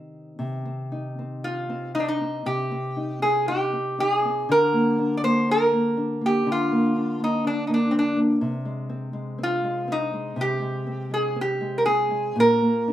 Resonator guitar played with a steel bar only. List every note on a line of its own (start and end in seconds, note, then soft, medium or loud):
1.44 1.94 F4 medium
1.95 2.02 D#4 medium
2.00 2.08 D4 soft
2.08 2.47 D#4 medium
2.46 3.22 G4 medium
3.22 3.48 G#4 medium
3.48 4.00 G4 medium
4.00 4.51 G#4 medium
4.52 5.17 A#4 medium
5.17 5.23 D5 medium
5.24 5.49 C5 medium
5.51 6.25 A#4 medium
6.26 6.49 G4 medium
6.52 7.23 F4 medium
7.24 7.45 D#4 medium
7.47 7.65 D4 medium
7.67 7.70 D#4 soft
7.74 7.90 D4 medium
7.91 7.94 C4 soft
7.99 8.19 D4 medium
9.43 9.92 F4 medium
9.92 10.41 D#4 medium
10.41 11.13 G4 medium
11.14 11.39 G#4 medium
11.41 11.84 G4 medium
11.78 11.85 A#4 medium
11.86 12.39 G#4 medium
12.40 12.93 A#4 medium